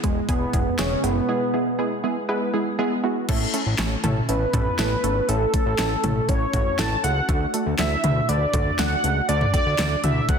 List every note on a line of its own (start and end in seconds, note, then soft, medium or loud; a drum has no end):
0.04 0.21 E1 loud
0.04 0.22 G#3 medium
0.04 0.27 G#3 medium
0.04 0.22 B3 medium
0.04 0.22 E4 medium
0.04 0.22 G#4 medium
0.04 kick loud
0.04 closed hi-hat medium
0.29 0.46 E1 loud
0.29 0.47 G#3 loud
0.29 0.75 B3 loud
0.29 0.47 B3 loud
0.29 0.47 E4 medium
0.29 0.47 G#4 loud
0.29 kick loud
0.29 closed hi-hat medium
0.53 0.71 E1 loud
0.53 0.72 G#3 medium
0.53 0.72 B3 medium
0.53 0.72 E4 medium
0.53 0.72 G#4 medium
0.53 kick medium
0.53 closed hi-hat medium
0.53 mid tom medium
0.79 0.96 E1 loud
0.79 0.97 G#3 loud
0.79 0.97 B3 medium
0.79 1.05 C#4 loud
0.79 0.97 E4 medium
0.79 0.97 G#4 loud
0.79 snare loud
0.79 closed hi-hat medium
1.04 1.21 F#1 medium
1.04 1.22 G#3 medium
1.04 2.04 B3 loud
1.04 1.22 B3 medium
1.04 1.22 E4 medium
1.04 1.22 G#4 medium
1.04 closed hi-hat medium
1.04 cowbell medium
1.29 1.47 G#3 loud
1.29 1.47 B3 medium
1.29 1.47 E4 medium
1.29 1.47 G#4 loud
1.54 1.72 G#3 medium
1.54 1.72 B3 medium
1.54 1.72 E4 medium
1.54 1.72 G#4 medium
1.79 1.97 G#3 loud
1.79 1.97 B3 medium
1.79 1.97 E4 medium
1.79 1.97 G#4 loud
2.04 2.22 G#3 medium
2.04 2.22 B3 medium
2.04 2.22 E4 medium
2.04 2.22 G#4 loud
2.29 2.47 G#3 loud
2.29 2.47 B3 loud
2.29 2.47 E4 loud
2.29 2.47 B4 loud
2.54 2.72 G#3 medium
2.54 2.72 B3 medium
2.54 2.72 E4 medium
2.54 2.72 G#4 loud
2.79 2.97 G#3 loud
2.79 2.97 B3 loud
2.79 2.97 E4 loud
2.79 2.97 G#4 loud
3.04 3.22 G#3 medium
3.04 3.22 B3 medium
3.04 3.22 E4 medium
3.04 3.22 F#4 loud
3.29 3.46 A1 loud
3.29 3.47 A3 loud
3.29 3.47 C#4 loud
3.29 3.47 E4 loud
3.29 3.47 A4 loud
3.29 kick loud
3.29 closed hi-hat medium
3.29 crash loud
3.54 3.72 A3 medium
3.54 3.72 C#4 medium
3.54 3.72 E4 medium
3.54 3.72 A4 loud
3.54 closed hi-hat medium
3.66 3.75 A1 loud
3.79 3.96 A1 loud
3.79 3.97 A3 medium
3.79 3.97 C#4 medium
3.79 3.97 E4 medium
3.79 3.97 A4 loud
3.79 snare loud
3.79 closed hi-hat medium
4.04 4.21 A1 loud
4.04 4.22 A3 loud
4.04 4.22 C#4 loud
4.04 4.22 E4 loud
4.04 4.22 A4 loud
4.04 closed hi-hat medium
4.04 mid tom loud
4.29 4.46 A1 loud
4.29 4.47 A3 medium
4.29 4.47 C#4 medium
4.29 4.47 E4 medium
4.29 4.47 A4 medium
4.29 5.30 B4 loud
4.29 closed hi-hat medium
4.53 4.71 A1 loud
4.53 4.72 A3 loud
4.53 4.72 C#4 medium
4.53 4.72 E4 medium
4.53 4.72 A4 loud
4.53 kick medium
4.53 closed hi-hat medium
4.53 mid tom loud
4.78 4.96 A1 loud
4.78 4.97 A3 medium
4.78 4.97 C#4 medium
4.78 4.97 E4 medium
4.78 4.97 A4 medium
4.78 snare loud
4.78 closed hi-hat medium
5.03 5.21 G#1 medium
5.03 5.22 A3 medium
5.03 5.22 C#4 medium
5.03 5.22 E4 medium
5.03 5.22 A4 loud
5.03 closed hi-hat medium
5.28 5.46 A1 loud
5.28 5.47 A3 loud
5.28 5.47 C#4 medium
5.28 5.47 E4 medium
5.28 6.30 A4 loud
5.28 5.47 A4 loud
5.28 closed hi-hat medium
5.54 5.72 A3 medium
5.54 5.72 C#4 medium
5.54 5.72 E4 medium
5.54 5.72 A4 medium
5.54 kick loud
5.54 closed hi-hat medium
5.66 5.75 A1 loud
5.79 5.96 A1 loud
5.79 5.97 A3 medium
5.79 5.97 C#4 medium
5.79 5.97 E4 medium
5.79 5.97 A4 medium
5.79 snare loud
5.79 closed hi-hat medium
6.04 6.21 A1 loud
6.04 6.22 A3 loud
6.04 6.22 C#4 loud
6.04 6.22 E4 loud
6.04 6.22 A4 loud
6.04 closed hi-hat medium
6.04 mid tom loud
6.29 6.46 A1 loud
6.29 6.47 A3 medium
6.29 6.47 C#4 medium
6.29 6.47 E4 medium
6.29 6.47 A4 medium
6.29 6.80 C#5 loud
6.29 kick loud
6.29 closed hi-hat medium
6.53 6.71 A1 loud
6.53 6.72 A3 loud
6.53 6.72 C#4 medium
6.53 6.72 E4 medium
6.53 6.72 F#4 loud
6.53 kick medium
6.53 closed hi-hat medium
6.53 mid tom loud
6.79 6.96 A1 loud
6.79 6.97 A3 medium
6.79 6.97 C#4 medium
6.79 6.97 E4 medium
6.79 6.97 A4 medium
6.79 7.03 A5 loud
6.79 snare loud
6.79 closed hi-hat medium
7.04 7.21 C#2 medium
7.04 7.22 A3 medium
7.04 7.22 C#4 medium
7.04 7.22 E4 medium
7.04 7.22 A4 medium
7.04 7.50 F#5 loud
7.04 closed hi-hat medium
7.29 7.46 D2 loud
7.29 7.47 A3 loud
7.29 7.47 D4 medium
7.29 7.47 F#4 medium
7.29 7.47 A4 loud
7.29 kick loud
7.29 closed hi-hat medium
7.54 7.72 A3 medium
7.54 7.72 D4 medium
7.54 7.72 F#4 medium
7.54 7.72 A4 medium
7.54 closed hi-hat medium
7.66 7.75 D2 loud
7.79 7.96 D2 loud
7.79 7.97 A3 medium
7.79 7.97 D4 medium
7.79 7.97 F#4 medium
7.79 7.97 A4 medium
7.79 8.30 E5 loud
7.79 snare loud
7.79 closed hi-hat medium
8.04 8.21 D2 loud
8.04 8.22 A3 loud
8.04 8.22 D4 medium
8.04 8.22 F#4 medium
8.04 8.22 B4 loud
8.04 closed hi-hat medium
8.04 mid tom loud
8.29 8.46 D2 loud
8.29 8.47 A3 medium
8.29 8.47 D4 medium
8.29 8.47 F#4 medium
8.29 8.47 B4 medium
8.29 8.80 D5 loud
8.29 closed hi-hat medium
8.54 8.71 D2 loud
8.54 8.72 A3 loud
8.54 8.72 D4 medium
8.54 8.72 F#4 medium
8.54 8.72 A4 loud
8.54 kick medium
8.54 closed hi-hat medium
8.54 mid tom medium
8.79 8.96 D2 loud
8.79 8.97 A3 medium
8.79 8.97 D4 medium
8.79 8.97 F#4 medium
8.79 8.97 A4 medium
8.79 9.28 F#5 loud
8.79 snare loud
8.79 closed hi-hat medium
9.04 9.21 C#2 medium
9.04 9.22 A3 medium
9.04 9.22 D4 medium
9.04 9.22 F#4 medium
9.04 9.22 A4 medium
9.04 closed hi-hat medium
9.29 9.46 D2 loud
9.29 9.47 A3 loud
9.29 9.47 D4 medium
9.29 9.47 F#4 medium
9.29 9.47 A4 loud
9.29 9.52 D5 loud
9.29 closed hi-hat medium
9.41 mid tom loud
9.54 9.72 A3 medium
9.54 9.72 D4 medium
9.54 9.72 F#4 medium
9.54 9.72 A4 medium
9.54 10.00 D5 loud
9.54 kick loud
9.54 closed hi-hat medium
9.54 cowbell medium
9.66 9.75 D2 loud
9.79 9.96 D2 loud
9.79 9.97 A3 medium
9.79 9.97 D4 medium
9.79 9.97 F#4 medium
9.79 9.97 A4 medium
9.79 snare loud
9.79 closed hi-hat medium
10.04 10.21 D2 loud
10.04 10.22 A3 loud
10.04 10.22 D4 medium
10.04 10.22 F#4 medium
10.04 10.22 A4 loud
10.04 10.30 E5 loud
10.04 closed hi-hat medium
10.04 mid tom loud
10.29 10.39 D2 loud
10.29 10.39 A3 medium
10.29 10.39 D4 medium
10.29 10.39 F#4 medium
10.29 10.39 A4 medium
10.29 10.39 F#5 loud
10.29 kick loud
10.29 closed hi-hat medium